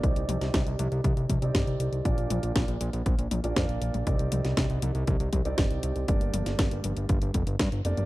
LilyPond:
<<
  \new Staff \with { instrumentName = "Grand piano" } { \time 4/4 \key c \minor \tempo 4 = 119 <c c' ees' g' d''>2~ <c c' ees' g' d''>8. <c c' ees' g' d''>4~ <c c' ees' g' d''>16 | <bes, bes d' f' d''>2~ <bes, bes d' f' d''>8. <bes, bes d' f' d''>4~ <bes, bes d' f' d''>16 | <c c' ees' g' d''>2~ <c c' ees' g' d''>8. <c c' ees' g' d''>4~ <c c' ees' g' d''>16 | <g, bes d' g' d''>2~ <g, bes d' g' d''>8. r8. <bes d' g' d''>8 | }
  \new Staff \with { instrumentName = "Analog synth bass" } { \clef bass \time 4/4 \key c \minor c,16 c,16 c,16 c,16 c,16 c,16 c,16 c,16 c,16 c,16 c,16 c,16 g,,16 c,16 c,16 c,16 | bes,,16 bes,,16 bes,,16 bes,,16 bes,,16 bes,,16 bes,,16 bes,,16 bes,,16 bes,,16 bes,,16 bes,,16 f,16 bes,,16 bes,,16 bes,,16 | c,16 c,16 c,16 c,16 c,16 c,16 c,16 c,16 c,16 c,16 c,16 c,16 g,,16 c,16 c,16 c,16 | g,,16 g,,16 g,,16 g,,16 g,,16 g,,16 g,,16 g,,16 g,,16 g,,16 f,,16 g,,16 g,16 g,,16 f,,16 g,,16 | }
  \new DrumStaff \with { instrumentName = "Drums" } \drummode { \time 4/4 <hh bd>16 hh16 <hh tommh>16 <hh sn>16 <hh bd sn>16 hh16 <hh tommh>16 hh16 <hh bd tommh>16 hh16 <hh bd tommh>16 hh16 <hh bd sn>16 hh16 hh16 hh16 | <hh bd>16 hh16 <hh tommh>16 hh16 <hh bd sn>16 hh16 hh16 hh16 <hh bd>16 hh16 <hh tommh>16 hh16 <hh bd sn>16 hh16 hh16 <hh tommh>16 | <hh bd>16 hh16 <hh tommh>16 <hh sn>16 <hh bd sn>16 hh16 <hh tommh>16 hh16 <hh bd tommh>16 hh16 <hh bd tommh>16 hh16 <hh bd sn>16 hh16 hh16 hh16 | <hh bd>16 hh16 <hh tommh>16 <hh sn>16 <hh bd sn>16 hh16 <hh tommh>16 hh16 <hh bd>16 hh16 <hh bd tommh>16 hh16 <hh bd sn>16 hh16 hh16 <hh tommh>16 | }
>>